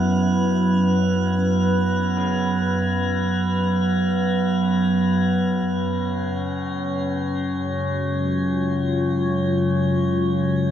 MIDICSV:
0, 0, Header, 1, 5, 480
1, 0, Start_track
1, 0, Tempo, 500000
1, 10283, End_track
2, 0, Start_track
2, 0, Title_t, "Synth drone"
2, 0, Program_c, 0, 95
2, 0, Note_on_c, 0, 59, 73
2, 0, Note_on_c, 0, 71, 69
2, 5409, Note_on_c, 0, 61, 77
2, 5412, Note_on_c, 0, 73, 74
2, 5444, Note_off_c, 0, 71, 0
2, 5457, Note_off_c, 0, 59, 0
2, 10283, Note_off_c, 0, 61, 0
2, 10283, Note_off_c, 0, 73, 0
2, 10283, End_track
3, 0, Start_track
3, 0, Title_t, "Analog synth pad"
3, 0, Program_c, 1, 89
3, 0, Note_on_c, 1, 54, 90
3, 0, Note_on_c, 1, 61, 63
3, 0, Note_on_c, 1, 64, 74
3, 5411, Note_off_c, 1, 64, 0
3, 5414, Note_off_c, 1, 54, 0
3, 5428, Note_on_c, 1, 49, 81
3, 6692, Note_on_c, 1, 56, 85
3, 7020, Note_on_c, 1, 65, 65
3, 8958, Note_off_c, 1, 61, 0
3, 10283, Note_off_c, 1, 49, 0
3, 10283, Note_off_c, 1, 56, 0
3, 10283, Note_off_c, 1, 65, 0
3, 10283, End_track
4, 0, Start_track
4, 0, Title_t, "Grand piano"
4, 0, Program_c, 2, 0
4, 0, Control_c, 2, 64, 127
4, 2087, Note_on_c, 2, 49, 68
4, 4439, Note_on_c, 2, 61, 50
4, 5429, Control_c, 2, 64, 0
4, 7488, Note_off_c, 2, 49, 0
4, 9833, Note_off_c, 2, 61, 0
4, 10283, End_track
5, 0, Start_track
5, 0, Title_t, "Synth drone"
5, 0, Program_c, 3, 95
5, 0, Note_on_c, 3, 42, 69
5, 0, Note_on_c, 3, 54, 74
5, 5417, Note_off_c, 3, 42, 0
5, 5418, Note_off_c, 3, 54, 0
5, 5429, Note_on_c, 3, 42, 78
5, 5430, Note_on_c, 3, 54, 76
5, 10283, Note_off_c, 3, 42, 0
5, 10283, Note_off_c, 3, 54, 0
5, 10283, End_track
0, 0, End_of_file